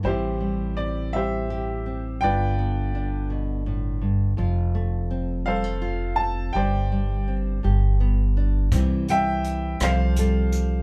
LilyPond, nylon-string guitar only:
\new Staff \with { instrumentName = "Nylon-string guitar" } { \time 6/8 \key a \minor \tempo 4. = 55 << { <e g c' g'>8 g8 c'8 g8 g'8 c'8 | <d b d' f'>8 b8 d'2 | f'8 a8 c'8 g16 a16 f'8 c'8 | g'8 g8 c'8 g'8 b8 d'8 |
<e g c' e'>8 <g c' e'>4 <f g a'>8 <g a'>4 | } \\ { a,2. | g,4. b,8 a,8 g,8 | f,2. | g,4. g,4. |
c4. c4. | } >> }